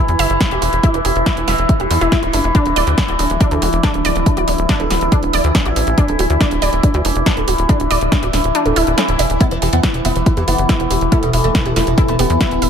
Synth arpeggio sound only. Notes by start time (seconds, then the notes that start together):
0.19 E5
0.41 E4
0.51 G4
0.62 E4
0.83 E4
0.94 B4
1.05 G4
1.26 E4
1.48 E5
1.69 E4
1.80 G4
1.91 E4
2.01 E4
2.12 E4
2.23 E4
2.33 D4
2.44 E4
2.55 D4
2.76 D5
2.98 D4
3.08 F#4
3.19 D4
3.41 D4
3.51 A4
3.62 F#4
3.83 D4
4.05 D5
4.26 D4
4.37 F#4
4.48 D4
4.69 D4
4.80 A4
4.91 F#4
5.12 D4
5.33 D5
5.55 D4
5.66 F#4
5.76 D4
5.98 D4
6.08 A4
6.19 F#4
6.41 D4
6.62 D5
6.83 D4
6.94 F#4
7.05 D4
7.26 D4
7.37 A4
7.48 F#4
7.69 D4
7.91 D5
8.12 D4
8.23 F#4
8.33 D4
8.55 D4
8.66 A4
8.76 E4
8.98 C#4
9.19 D5
9.41 E4
9.51 B4
9.62 G4
9.83 E4
10.05 E5
10.26 E4
10.37 G4
10.48 E4
10.69 E4
10.80 B4
10.91 G4
11.12 E4
11.33 E5
11.55 E4
11.66 G4
11.76 E4
11.98 E4
12.08 B4
12.19 G4
12.41 E4
12.62 E5